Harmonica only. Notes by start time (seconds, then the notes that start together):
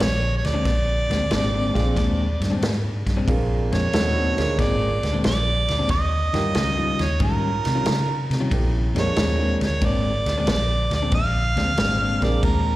0.02 C#5
0.37 C#5
0.47 D5
3.74 C#5
4.60 D5
5.26 D5
5.91 D#5
7.02 C#5
7.23 A#4
9.00 C#5
9.66 C#5
9.85 D5
10.50 D5
10.95 D5
11.14 F5
12.24 D5
12.44 A#4